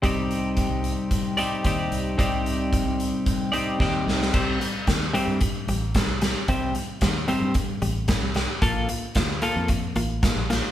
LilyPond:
<<
  \new Staff \with { instrumentName = "Clean electric guitar" } { \time 4/4 \key c \dorian \tempo 4 = 112 <c g c' ees' g' d''>2~ <c g c' ees' g' d''>8 <c g c' ees' g' d''>8 <c g c' ees' g' d''>4 | <c g c' ees' g' d''>2~ <c g c' ees' g' d''>8 <c g c' ees' g' d''>8 <c g c' ees' g' d''>4 | <c g c'>8 <c g>8 <c g>8 <c g c'>8 <c g>8 <c g>8 <c g>8 <c g>8 | <c g c'>8 <c g>8 <c g>8 <c g c'>8 <c g>8 <c g>8 <c g>8 <c g>8 |
<bes f' a'>8 <bes f'>8 <bes f'>8 <bes f' a'>8 <bes f'>8 <bes f'>8 <bes f'>8 <bes f'>8 | }
  \new Staff \with { instrumentName = "Fingered electric bass" } { \clef bass \time 4/4 \key c \dorian c,4~ c,16 c,8 r4 r16 ees,8 c,8 | c,4~ c,16 c,8 r4 r16 ees,8 c,8 | c,8 r8 ees,8 r16 g,8. a,,8. c,8 r16 | c,8 r8 ees,8 r16 g,8. a,,8. c,8 r16 |
bes,,8 r8 d,8 r16 f,8. a,,8. bes,,8 r16 | }
  \new DrumStaff \with { instrumentName = "Drums" } \drummode { \time 4/4 <hh bd>8 hh8 <hh bd>8 hh8 <hh bd>8 hh8 <hh bd>8 hh8 | <hh bd>8 hh8 <hh bd>8 hh8 <hh bd>8 hh8 <bd sn>8 sn16 sn16 | <cymc bd>8 hh8 <hh bd sn>8 hh8 <hh bd>8 hh8 <hh bd sn>8 <hh sn>8 | <hh bd>8 hh8 <hh bd sn>8 hh8 <hh bd>8 hh8 <hh bd sn>8 <hh sn>8 |
<hh bd>8 hh8 <hh bd sn>8 hh8 <hh bd>8 hh8 <hh bd sn>8 <hh sn>8 | }
>>